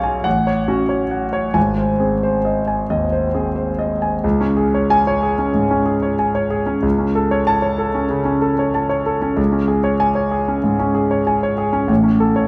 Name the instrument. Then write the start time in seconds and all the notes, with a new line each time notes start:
grand piano
Already playing: B1 C#4 G#4 C#5 F5 G#5
0.03 G#5
0.24 A1 F#5
0.47 C#5
0.68 C#4 F#4
0.89 C#5
1.11 F#5
1.33 C#5
1.54 G#1 G#5
1.78 C5
2.00 C4 G#4
2.23 C5
2.45 D#5
2.68 G#5
2.90 D#2 D#5
3.12 C5
3.34 C4 G#4
3.56 C5
3.79 D#5
4.02 G#5
4.24 C#2
4.41 C#4
4.57 G#4
4.74 C#5
4.90 G#5
5.07 C#5
5.23 G#4
5.38 C#4
5.54 G#2
5.71 C#4
5.86 G#4
6.02 C#5
6.19 G#5
6.35 C#5
6.50 G#4
6.66 C#4
6.82 C#2
6.99 C#4
7.15 A4
7.31 C#5
7.47 A5
7.62 C#5
7.78 A4
7.94 C#4
8.10 C#3
8.25 C#4
8.42 A4
8.59 C#5
8.74 A5
8.89 C#5
9.06 A4
9.22 C#4
9.37 C#2
9.52 C#4
9.68 G#4
9.84 C#5
10.00 G#5
10.15 C#5
10.31 G#4
10.48 C#4
10.64 G#2
10.79 C#4
10.94 G#4
11.11 C#5
11.27 G#5
11.43 C#5
11.58 G#4
11.73 C#4
11.87 A1 A2
12.04 C#4
12.20 A4
12.36 C#5